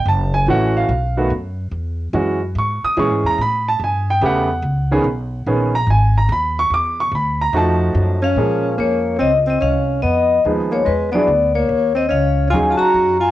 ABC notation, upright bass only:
X:1
M:4/4
L:1/8
Q:"Swing" 1/4=144
K:Cblyd
V:1 name="Upright bass" clef=bass
G,,,2 =A,,,2 =B,,,2 ^F,,2 | =E,,2 ^F,,2 ^G,, z (3B,, G,, E,, | =A,,2 =G,,2 =E,,2 ^C,,2 | =B,,,2 _B,,,2 ^G,,,2 ^D,,2 |
=E,,2 =D,,2 F,,2 G,,2 | [K:Bbm] B,,2 F,,2 D,,2 C,,2 | F,,2 E,,2 =E,,2 =D,,2 | E,,2 D,,2 E,, z G,,2 |]